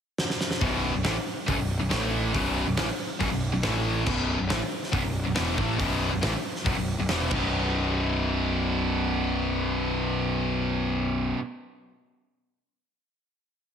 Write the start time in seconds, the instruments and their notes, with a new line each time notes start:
0.18 snare
0.30 snare
0.41 snare
0.51 snare
0.61 picked electric bass B0, overdriven electric guitar B1 F#2 B2, kick, open hi-hat
0.93 picked electric bass B0, overdriven electric guitar B1 F#2
1.04 picked electric bass A1, overdriven electric guitar A2 E3, snare, open hi-hat
1.48 picked electric bass B0, overdriven electric guitar B1 F#2, kick, open hi-hat
1.58 picked electric bass B0, overdriven electric guitar B1 F#2
1.79 picked electric bass B0, overdriven electric guitar B1 F#2
1.90 picked electric bass A1, overdriven electric guitar A2 E3 A3, snare, open hi-hat
2.33 picked electric bass B0, overdriven electric guitar B1 F#2 B2, kick, open hi-hat
2.67 picked electric bass B0, overdriven electric guitar B1 F#2
2.77 picked electric bass A1, overdriven electric guitar A2 E3, snare, open hi-hat
3.19 picked electric bass B0, overdriven electric guitar B1 F#2, kick, open hi-hat
3.30 picked electric bass B0, overdriven electric guitar B1 F#2
3.53 picked electric bass B0, overdriven electric guitar B1 F#2
3.63 picked electric bass A1, overdriven electric guitar A2 E3 A3, snare, open hi-hat
4.05 picked electric bass B0, overdriven electric guitar B1 F#2 B2, kick, crash
4.38 picked electric bass B0, overdriven electric guitar B1 F#2
4.49 picked electric bass A1, overdriven electric guitar A2 E3, snare, open hi-hat
4.83 snare
4.92 picked electric bass B0, overdriven electric guitar B1 F#2, kick, open hi-hat
5.01 picked electric bass B0, overdriven electric guitar B1 F#2
5.24 picked electric bass B0, overdriven electric guitar B1 F#2
5.35 picked electric bass E1, overdriven electric guitar E2 B2 E3, snare, open hi-hat
5.56 picked electric bass A1, overdriven electric guitar A2 E3 A3, kick
5.78 picked electric bass B0, overdriven electric guitar B1 F#2 B2, kick, open hi-hat
6.11 picked electric bass B0, overdriven electric guitar B1 F#2
6.21 picked electric bass A1, overdriven electric guitar A2 E3, snare, open hi-hat
6.55 snare
6.64 picked electric bass B0, overdriven electric guitar B1 F#2, kick, open hi-hat
6.76 picked electric bass B0, overdriven electric guitar B1 F#2
6.98 picked electric bass B0, overdriven electric guitar B1 F#2
7.09 picked electric bass E1, overdriven electric guitar E2 B2 E3, snare, open hi-hat
7.29 picked electric bass B0, overdriven electric guitar B1 F#2 B2, kick, crash
7.33 distorted electric guitar B1 F#2
7.37 distorted electric guitar B2